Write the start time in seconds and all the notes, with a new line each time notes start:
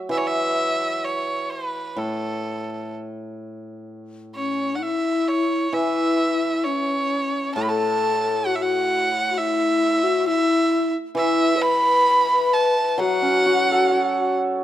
Already playing: F#3
0.09 E3 E5
0.17 C#5
0.26 E5
1.04 C#5
1.51 B4
1.96 A2 A4
4.35 C#4 C#5
4.75 F#5
4.81 E4 E5
5.27 C#5
5.73 E3 E4 E5
6.63 C#4 C#5
7.55 A2 A4 A5
7.63 B5
7.69 A4 A5
8.46 F#4 F#5
8.55 E5
8.59 F#4 F#5
9.31 F#4
9.37 E4 E5
10.03 F#4
10.27 E4 E5
11.15 E3 E4 E5
11.56 C#5
11.62 B4 B5
12.31 B4
12.53 A5
12.98 F#3 F#4 F#5
13.22 C#4
13.46 F#4
13.71 A4
13.91 C#5